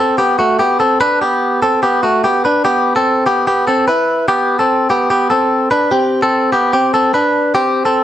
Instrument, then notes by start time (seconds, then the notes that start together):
clean electric guitar
0.00 C4 A4
0.18 B3 G4
0.39 A3 F#4
0.59 B3 G4
0.80 C4 A4
1.01 D4 B4
1.22 B3 G4
1.62 C4 A4
1.83 B3 G4
2.03 A3 F#4
2.24 B3 G4
2.45 D4 B4
2.65 B3 G4
2.96 C4 A4
3.26 B3 G4
3.47 B3 G4
3.67 C4 A4
3.88 E4 B4
4.28 B3 G4
4.59 C4 A4
4.90 B3 G4
5.10 B3 G4
5.30 C4 A4
5.71 D4 B4
5.91 C4 G4
6.22 C4 A4
6.52 B3 G4
6.73 C4 G4
6.94 C4 A4
7.14 D4 B4
7.55 C4 G4
7.85 C4 A4